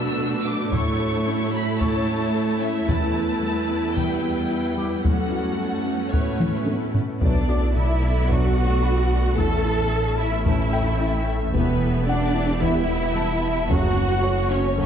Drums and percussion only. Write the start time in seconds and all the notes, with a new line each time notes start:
0.72 taiko
1.81 taiko
2.89 taiko
3.97 taiko
5.05 taiko
6.13 taiko
6.40 taiko mid
6.67 taiko high
6.94 taiko low
7.21 taiko
7.76 taiko low-mid
8.30 taiko
9.38 taiko
10.46 taiko
11.54 taiko
12.63 taiko
13.70 taiko
14.78 taiko